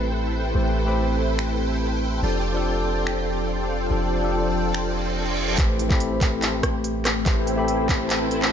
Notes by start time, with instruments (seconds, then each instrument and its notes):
Already playing: 808-style bass A1, tine electric piano A3 C4 G4 B4 C5 B5, ambient pad A3 C4 G4, supersaw synth E4 A4 B4 C5 G5
0.54 808-style bass A1, tine electric piano A3 G4 B4 C5
0.85 tine electric piano A3 G4 B5
0.89 tine electric piano C4
1.39 finger snap
2.22 808-style bass F1, tine electric piano F3 D4 G4 A4, ambient pad F3 D4 G4 A4, supersaw synth F4 A4 C5 D5 G5
2.53 tine electric piano F3 D4 G4 A4
3.07 finger snap
3.90 808-style bass F1, tine electric piano F3 D4 G4 A4
4.21 tine electric piano F3 D4 G4
4.25 tine electric piano A4
4.75 finger snap, reverse cymbal
5.57 808-style bass A1, tine electric piano A3 G4 B4 C5, ambient pad A3 C4 G4, supersaw synth E4 A4 B4 C5 G5, kick, clap, closed hi-hat, riser
5.79 closed hi-hat
5.89 tine electric piano A3 G4 B5, kick, clap
5.93 tine electric piano C4
6.00 closed hi-hat
6.21 kick, clap, closed hi-hat
6.42 clap, closed hi-hat
6.63 supersaw synth E4 A4 B4 C5 G5, kick, cross-stick, closed hi-hat
6.84 closed hi-hat
7.05 cross-stick, clap, closed hi-hat
7.25 808-style bass A1, tine electric piano A3 G4 B4 C5, supersaw synth E4 A4 B4 C5 G5, kick, clap, closed hi-hat
7.47 closed hi-hat
7.56 tine electric piano A3 C4 G4 B5
7.68 closed hi-hat
7.89 kick, clap, closed hi-hat
8.10 clap, closed hi-hat
8.31 supersaw synth E4 A4 B4 C5 B5, closed hi-hat
8.42 supersaw synth E4 A4 B4 C5 G5, clap